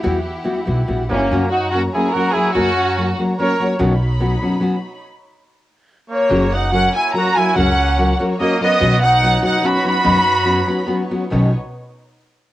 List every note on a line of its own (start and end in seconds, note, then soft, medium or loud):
0.00 0.17 E3 medium
0.00 0.17 G3 medium
0.00 0.17 B3 medium
0.00 1.28 E4 medium
0.00 0.17 E4 medium
0.00 1.29 G4 medium
0.00 1.27 F#5 medium
0.04 0.46 E2 medium
0.04 0.17 F#4 loud
0.44 0.58 G3 medium
0.44 0.59 B3 medium
0.44 0.58 E4 medium
0.44 0.59 F#4 medium
0.65 0.86 B1 medium
0.65 0.79 G3 soft
0.65 0.80 B3 medium
0.65 0.80 E4 soft
0.65 0.80 F#4 medium
0.87 1.08 A#1 medium
0.87 1.01 G3 soft
0.87 1.02 B3 medium
0.87 1.02 E4 medium
0.87 1.02 F#4 medium
1.09 1.29 G1 medium
1.09 1.22 G3 soft
1.09 1.49 A#3 medium
1.09 1.23 B3 soft
1.09 1.50 C#4 medium
1.09 1.23 E4 medium
1.09 1.23 F#4 medium
1.31 1.86 F#2 medium
1.31 1.45 F#2 medium
1.31 1.44 C#3 medium
1.31 1.45 F#3 medium
1.31 1.45 A#3 medium
1.31 1.45 C#4 medium
1.31 3.78 F#4 medium
1.31 1.45 F#4 medium
1.31 5.00 C#5 medium
1.31 3.78 A#5 medium
1.51 1.70 D#4 medium
1.51 1.69 F#4 medium
1.70 1.86 F#3 soft
1.70 1.87 A#3 soft
1.70 1.81 C#4 medium
1.70 1.81 F#4 medium
1.75 1.87 C#4 soft
1.75 1.87 F#4 medium
1.94 2.07 F#3 soft
1.94 2.07 A#3 soft
1.94 2.08 C#4 medium
1.94 2.15 E4 medium
1.94 2.08 F#4 medium
1.94 2.13 G#4 medium
2.11 2.28 F#3 medium
2.11 2.35 F#4 medium
2.11 2.35 A#4 medium
2.15 2.28 A#3 soft
2.15 2.28 C#4 soft
2.15 2.29 F#4 soft
2.32 2.48 F#3 soft
2.32 2.48 A#3 soft
2.32 2.48 C#4 medium
2.32 2.54 E4 medium
2.32 2.48 F#4 soft
2.32 2.54 G#4 medium
2.53 2.69 F#2 medium
2.53 3.11 F#2 medium
2.53 2.69 C#3 medium
2.53 2.69 F#3 medium
2.53 2.69 A#3 medium
2.53 3.15 C#4 medium
2.53 2.69 C#4 medium
2.53 3.14 F#4 medium
2.53 2.69 F#4 medium
2.97 3.11 F#3 medium
2.97 3.11 A#3 medium
2.97 3.11 C#4 medium
2.97 3.11 F#4 medium
3.18 3.31 F#3 medium
3.18 3.31 A#3 medium
3.18 3.31 C#4 soft
3.18 3.32 F#4 medium
3.38 3.52 F#3 soft
3.38 3.52 A#3 medium
3.38 3.52 C#4 medium
3.38 3.53 F#4 medium
3.38 3.68 A#4 medium
3.38 3.69 C#5 medium
3.59 3.72 F#3 soft
3.59 3.72 A#3 medium
3.59 3.72 C#4 medium
3.59 3.73 F#4 medium
3.79 4.34 B1 medium
3.79 3.92 B2 medium
3.79 3.93 D#3 medium
3.79 3.92 F#3 medium
3.79 3.93 B3 medium
3.79 3.93 C#4 medium
3.79 5.02 D#4 medium
3.79 3.93 F#4 loud
3.79 5.03 B5 medium
4.20 4.33 F#3 medium
4.20 4.34 B3 medium
4.20 4.34 C#4 medium
4.20 4.34 F#4 medium
4.41 4.54 F#3 medium
4.41 4.54 B3 medium
4.41 4.55 C#4 medium
4.41 4.55 F#4 medium
4.60 4.74 F#3 medium
4.60 4.75 B3 medium
4.60 4.75 C#4 medium
4.60 4.75 F#4 medium
6.10 6.56 A#3 medium
6.10 6.50 C#5 medium
6.29 6.86 F#1 medium
6.29 6.44 F#2 medium
6.29 6.43 C#3 medium
6.29 6.44 F#3 medium
6.29 8.78 A#3 medium
6.29 6.44 C#4 medium
6.29 6.44 F#4 medium
6.29 8.79 F#4 medium
6.29 6.44 A#4 medium
6.29 11.28 C#5 medium
6.53 6.73 D#4 medium
6.53 6.71 F#5 medium
6.71 6.86 F#3 medium
6.71 6.86 C#4 medium
6.71 6.94 C#4 medium
6.71 6.86 F#4 medium
6.71 6.86 A#4 medium
6.71 6.93 F#5 medium
6.95 7.14 E4 medium
6.95 7.14 G#5 medium
7.14 7.28 F#3 medium
7.14 7.28 C#4 medium
7.14 7.28 F#4 medium
7.14 7.41 F#4 loud
7.14 7.28 A#4 medium
7.14 7.35 A#5 medium
7.36 7.49 F#3 soft
7.36 7.49 C#4 soft
7.36 7.58 E4 loud
7.36 7.49 F#4 medium
7.36 7.50 A#4 soft
7.36 7.57 G#5 medium
7.55 8.11 C#2 medium
7.55 7.69 F#2 medium
7.55 7.69 C#3 medium
7.55 7.69 F#3 medium
7.55 7.69 C#4 medium
7.55 8.17 C#4 medium
7.55 7.69 F#4 medium
7.55 7.70 A#4 medium
7.55 8.16 F#5 medium
7.98 8.11 F#3 medium
7.98 8.11 C#4 medium
7.98 8.12 F#4 medium
7.98 8.12 A#4 medium
8.19 8.32 F#3 medium
8.19 8.32 C#4 medium
8.19 8.32 F#4 medium
8.19 8.32 A#4 medium
8.40 8.53 F#3 medium
8.40 8.60 A#3 medium
8.40 8.53 C#4 medium
8.40 8.53 F#4 medium
8.40 8.53 A#4 medium
8.40 8.60 D#5 medium
8.60 8.73 F#3 soft
8.60 9.06 B3 medium
8.60 8.73 C#4 medium
8.60 8.73 F#4 soft
8.60 8.74 A#4 medium
8.60 8.99 D#5 loud
8.80 9.35 B1 loud
8.80 8.93 B2 medium
8.80 8.93 D#3 medium
8.80 8.94 F#3 medium
8.80 8.94 B3 medium
8.80 11.30 B3 medium
8.80 8.94 C#4 medium
8.80 11.30 D#4 medium
8.80 8.94 F#4 medium
9.04 9.45 D#4 medium
9.04 9.44 F#5 loud
9.22 9.35 F#3 medium
9.22 9.35 B3 medium
9.22 9.36 C#4 medium
9.22 9.36 F#4 medium
9.42 9.55 F#3 soft
9.42 9.55 B3 medium
9.42 9.55 C#4 soft
9.42 9.55 F#4 medium
9.42 9.63 F#5 loud
9.46 9.68 D#4 medium
9.62 9.75 F#3 medium
9.62 9.76 B3 medium
9.62 9.76 C#4 medium
9.62 9.76 F#4 medium
9.62 9.86 B5 medium
9.66 9.86 F#4 loud
9.84 9.96 F#3 soft
9.84 9.97 B3 soft
9.84 9.97 C#4 medium
9.84 9.97 F#4 soft
9.84 10.86 B5 loud
9.88 10.87 F#4 loud
10.04 10.61 F#2 medium
10.04 10.17 B2 medium
10.04 10.17 D#3 medium
10.04 10.17 F#3 medium
10.04 10.17 B3 medium
10.04 10.17 C#4 medium
10.04 10.17 F#4 medium
10.45 10.59 F#3 medium
10.45 10.59 B3 medium
10.45 10.59 C#4 medium
10.45 10.59 F#4 medium
10.66 10.80 F#3 medium
10.66 10.80 B3 medium
10.66 10.80 C#4 medium
10.66 10.81 F#4 medium
10.86 11.01 F#3 medium
10.86 11.01 B3 medium
10.86 11.02 C#4 medium
10.86 11.02 F#4 medium
11.11 11.23 F#3 soft
11.11 11.24 B3 medium
11.11 11.24 C#4 medium
11.11 11.24 F#4 soft
11.30 11.52 B1 medium
11.30 11.49 B2 medium
11.30 11.49 D#3 medium
11.30 11.50 F#3 medium
11.30 11.52 B3 medium
11.30 11.49 B3 medium
11.30 11.50 C#4 medium
11.30 11.52 D#4 medium
11.30 11.50 F#4 medium
11.30 11.52 C#5 medium